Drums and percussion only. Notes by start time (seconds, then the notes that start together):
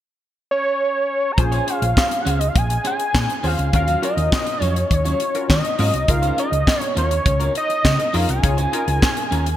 1.38 kick, closed hi-hat
1.52 closed hi-hat
1.68 closed hi-hat
1.82 closed hi-hat
1.97 kick, snare, clap
2.11 closed hi-hat
2.27 closed hi-hat
2.41 closed hi-hat
2.56 kick, closed hi-hat
2.70 closed hi-hat
2.85 closed hi-hat
3.00 closed hi-hat
3.15 kick, snare, clap
3.30 closed hi-hat
3.44 open hi-hat
3.59 closed hi-hat
3.73 kick, closed hi-hat
3.88 closed hi-hat
4.03 closed hi-hat
4.18 closed hi-hat
4.32 kick, snare, clap
4.47 closed hi-hat
4.62 closed hi-hat
4.76 closed hi-hat
4.91 kick, closed hi-hat
5.05 closed hi-hat
5.20 closed hi-hat
5.35 closed hi-hat
5.50 kick, snare, clap
5.65 closed hi-hat
5.79 open hi-hat
5.93 closed hi-hat
6.08 kick, closed hi-hat
6.23 closed hi-hat
6.38 closed hi-hat
6.53 closed hi-hat
6.67 kick, snare, clap
6.81 closed hi-hat
6.97 closed hi-hat
7.11 closed hi-hat
7.26 kick, closed hi-hat
7.40 closed hi-hat
7.55 closed hi-hat
7.70 closed hi-hat
7.85 kick, snare, clap
7.99 closed hi-hat
8.14 open hi-hat
8.29 closed hi-hat
8.43 kick, closed hi-hat
8.58 closed hi-hat
8.73 closed hi-hat
8.88 closed hi-hat
9.02 kick, snare, clap
9.17 closed hi-hat
9.32 closed hi-hat
9.46 closed hi-hat